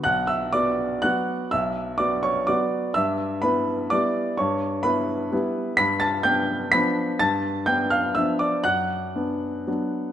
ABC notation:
X:1
M:3/4
L:1/8
Q:1/4=125
K:Bm
V:1 name="Grand piano"
[ff'] [ee'] [dd']2 [ff']2 | [ee']2 [dd'] [cc'] [dd']2 | [ee']2 [Bb]2 [dd']2 | [cc']2 [Bb]4 |
[bb'] [aa'] [gg']2 [bb']2 | [aa']2 [gg'] [=f=f'] [ee'] [dd'] | [ff']6 |]
V:2 name="Grand piano"
B,,,2 [B,F]2 [F,B,F]2 | B,,,2 [B,F]2 [F,B,F]2 | G,,2 [B,E]2 [G,B,E]2 | G,,2 [B,E]2 [G,B,E]2 |
G,,2 [B,D]2 [=F,B,D]2 | G,,2 [B,D]2 [=F,B,D]2 | F,,2 [B,D]2 [F,B,D]2 |]